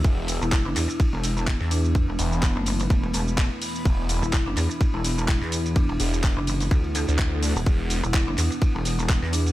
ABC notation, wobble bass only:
X:1
M:4/4
L:1/16
Q:"Swing 16ths" 1/4=126
K:Clyd
V:1 name="Wobble bass" clef=bass
z3 E,,,2 F,,, E,, z2 E,,,4 E,,3- | E,, E,,, z3 F,,,3 E,,,2 E,,,3 z3 | z3 E,,,2 F,,, E,, z2 E,,,4 E,,3- | E,, E,,, z3 F,,,3 D,,3 z4 E,,, |
z3 E,,,2 F,,, E,, z2 E,,,4 E,,3 |]